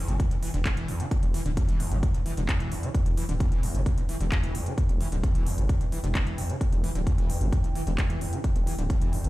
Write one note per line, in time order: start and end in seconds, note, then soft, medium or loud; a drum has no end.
0.00 9.29 E4 medium
0.00 9.29 B4 medium
0.00 9.29 G5 medium
0.08 0.18 G1 loud
0.08 0.15 D3 loud
0.08 closed hi-hat medium
0.20 0.24 E2 medium
0.20 kick loud
0.20 closed hi-hat medium
0.31 0.35 E2 medium
0.31 closed hi-hat medium
0.43 0.49 E3 loud
0.43 open hi-hat loud
0.54 0.63 E1 medium
0.54 0.58 D3 medium
0.54 closed hi-hat medium
0.65 0.75 E2 medium
0.65 kick loud
0.65 clap loud
0.65 closed hi-hat medium
0.77 0.86 E1 medium
0.77 0.90 E3 medium
0.77 closed hi-hat medium
0.88 1.01 E2 medium
0.88 open hi-hat loud
1.00 1.06 D3 loud
1.00 closed hi-hat medium
1.11 1.15 E2 medium
1.11 kick loud
1.11 closed hi-hat medium
1.23 1.32 E1 loud
1.23 1.27 E2 medium
1.23 closed hi-hat medium
1.34 1.41 E3 loud
1.34 open hi-hat loud
1.46 1.55 D1 medium
1.46 1.49 D3 medium
1.46 closed hi-hat medium
1.57 1.67 E2 medium
1.57 kick loud
1.57 closed hi-hat medium
1.69 1.78 E1 medium
1.69 1.82 E3 medium
1.69 closed hi-hat medium
1.80 1.93 E2 medium
1.80 open hi-hat loud
1.92 2.01 G1 loud
1.92 1.98 D3 loud
1.92 closed hi-hat soft
2.03 2.07 E2 medium
2.03 kick loud
2.03 closed hi-hat medium
2.14 2.18 E2 medium
2.14 closed hi-hat medium
2.26 2.32 E3 loud
2.26 open hi-hat loud
2.37 2.47 E1 medium
2.37 2.41 D3 medium
2.37 closed hi-hat medium
2.49 2.58 E2 medium
2.49 kick loud
2.49 clap loud
2.49 closed hi-hat medium
2.60 2.69 E1 medium
2.60 2.73 E3 medium
2.60 closed hi-hat medium
2.72 2.85 E2 medium
2.72 open hi-hat loud
2.83 2.89 D3 loud
2.83 closed hi-hat medium
2.95 2.98 E2 medium
2.95 kick loud
2.95 closed hi-hat medium
3.06 3.15 E1 loud
3.06 3.10 E2 medium
3.06 closed hi-hat medium
3.17 3.24 E3 loud
3.17 open hi-hat loud
3.29 3.38 D1 medium
3.29 3.33 D3 medium
3.29 closed hi-hat medium
3.40 3.50 E2 medium
3.40 kick loud
3.40 closed hi-hat medium
3.52 3.61 E1 medium
3.52 3.65 E3 medium
3.52 closed hi-hat medium
3.63 3.76 E2 medium
3.63 open hi-hat loud
3.75 3.84 G1 medium
3.75 3.81 D3 loud
3.75 closed hi-hat medium
3.86 3.90 E2 medium
3.86 kick loud
3.86 closed hi-hat medium
3.98 4.01 E2 medium
3.98 closed hi-hat medium
4.09 4.15 E3 loud
4.09 open hi-hat loud
4.21 4.30 E1 medium
4.21 4.24 D3 medium
4.21 closed hi-hat medium
4.32 4.41 E2 medium
4.32 kick loud
4.32 clap loud
4.32 closed hi-hat medium
4.43 4.53 E1 medium
4.43 4.56 E3 medium
4.43 closed hi-hat medium
4.55 4.68 E2 medium
4.55 open hi-hat loud
4.66 4.73 D3 loud
4.66 closed hi-hat medium
4.78 4.82 E2 medium
4.78 kick loud
4.78 closed hi-hat medium
4.89 4.98 E1 loud
4.89 4.93 E2 medium
4.89 closed hi-hat soft
5.01 5.07 E3 loud
5.01 open hi-hat loud
5.12 5.21 D1 medium
5.12 5.16 D3 medium
5.12 closed hi-hat medium
5.24 5.33 E2 medium
5.24 kick loud
5.24 closed hi-hat medium
5.35 5.44 E1 medium
5.35 5.48 E3 medium
5.35 closed hi-hat soft
5.46 5.59 E2 medium
5.46 open hi-hat loud
5.58 5.67 G1 loud
5.58 5.64 D3 loud
5.58 closed hi-hat medium
5.69 5.73 E2 medium
5.69 kick loud
5.69 closed hi-hat medium
5.81 5.85 E2 medium
5.81 closed hi-hat medium
5.92 5.99 E3 loud
5.92 open hi-hat loud
6.04 6.13 E1 medium
6.04 6.08 D3 medium
6.04 closed hi-hat medium
6.15 6.25 E2 medium
6.15 kick loud
6.15 clap loud
6.15 closed hi-hat medium
6.27 6.36 E1 medium
6.27 6.40 E3 medium
6.27 closed hi-hat medium
6.38 6.51 E2 medium
6.38 open hi-hat loud
6.50 6.56 D3 loud
6.50 closed hi-hat medium
6.61 6.65 E2 medium
6.61 kick loud
6.61 closed hi-hat medium
6.72 6.82 E1 loud
6.72 6.76 E2 medium
6.72 closed hi-hat medium
6.84 6.90 E3 loud
6.84 open hi-hat loud
6.95 7.05 D1 medium
6.95 6.99 D3 medium
6.95 closed hi-hat soft
7.07 7.16 E2 medium
7.07 kick loud
7.07 closed hi-hat medium
7.18 7.27 E1 medium
7.18 7.31 E3 medium
7.18 closed hi-hat soft
7.30 7.43 E2 medium
7.30 open hi-hat loud
7.41 7.50 G1 loud
7.41 7.47 D3 loud
7.41 closed hi-hat soft
7.53 7.56 E2 medium
7.53 kick loud
7.53 closed hi-hat medium
7.64 7.68 E2 medium
7.64 closed hi-hat soft
7.75 7.82 E3 loud
7.75 open hi-hat loud
7.87 7.96 E1 medium
7.87 7.91 D3 medium
7.87 closed hi-hat medium
7.98 8.08 E2 medium
7.98 kick loud
7.98 clap loud
7.98 closed hi-hat medium
8.10 8.19 E1 medium
8.10 8.23 E3 medium
8.10 closed hi-hat soft
8.21 8.34 E2 medium
8.21 open hi-hat loud
8.33 8.39 D3 loud
8.33 closed hi-hat medium
8.44 8.48 E2 medium
8.44 kick loud
8.44 closed hi-hat medium
8.56 8.65 E1 loud
8.56 8.59 E2 medium
8.56 closed hi-hat medium
8.67 8.73 E3 loud
8.67 open hi-hat loud
8.79 8.88 D1 medium
8.79 8.82 D3 medium
8.79 closed hi-hat soft
8.90 8.99 E2 medium
8.90 kick loud
8.90 closed hi-hat medium
9.01 9.11 E1 loud
9.01 9.14 E3 medium
9.01 closed hi-hat soft
9.13 9.26 E2 medium
9.13 open hi-hat loud
9.24 9.29 G1 medium
9.24 9.29 D3 loud
9.24 closed hi-hat soft